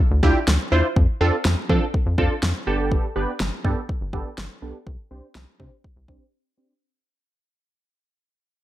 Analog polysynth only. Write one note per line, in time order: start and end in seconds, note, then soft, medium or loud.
0.23 0.39 D4 medium
0.23 0.39 E4 medium
0.23 0.39 F4 medium
0.23 0.39 G4 loud
0.72 0.87 D4 medium
0.72 0.87 E4 medium
0.72 0.87 F4 medium
0.72 0.87 C5 loud
1.21 1.36 C4 medium
1.21 1.36 D4 medium
1.21 1.36 F4 medium
1.21 1.36 A4 loud
1.70 1.85 C4 medium
1.70 1.85 D4 medium
1.70 1.85 F4 medium
1.70 1.85 A4 loud
2.18 2.34 C4 medium
2.18 2.34 D4 medium
2.18 2.34 F4 medium
2.18 2.34 A4 loud
2.67 3.06 B3 medium
2.67 3.06 D4 medium
2.67 3.06 G4 medium
2.67 3.06 A4 loud
3.16 3.31 B3 medium
3.16 3.31 D4 medium
3.16 3.31 G4 medium
3.16 3.31 B4 loud
3.65 3.80 B3 medium
3.65 3.80 D4 medium
3.65 3.80 G4 medium
3.65 3.80 A4 loud
4.13 4.29 B3 medium
4.13 4.29 D4 medium
4.13 4.29 G4 medium
4.13 4.29 A4 loud
4.62 4.78 B3 medium
4.62 4.78 D4 medium
4.62 4.78 G4 medium
4.62 4.78 A4 loud
5.11 5.26 C4 medium
5.11 5.26 D4 medium
5.11 5.26 G4 medium
5.11 5.26 C5 medium
5.60 5.75 C4 medium
5.60 5.75 D4 medium
5.60 5.75 G4 medium
5.60 5.75 C5 loud
6.09 6.24 C4 medium
6.09 6.24 D4 medium
6.09 6.24 G4 medium
6.09 6.24 C5 loud
6.57 6.73 C4 medium
6.57 6.73 D4 medium
6.57 6.73 G4 medium
6.57 6.73 C5 medium